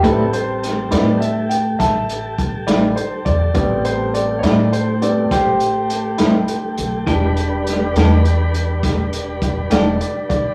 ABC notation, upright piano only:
X:1
M:12/8
L:1/8
Q:3/8=68
K:Am
V:1 name="Upright piano"
A c2 d e g [ea]2 z d c d | d c d [^cd] =c d [Gc]6 | z8 z d d d |]
V:2 name="Upright piano"
[G,CB]3 [G,B,C] z8 | [G,B,C]3 z2 [G,B,C] z6 | [G,^G,D]12 |]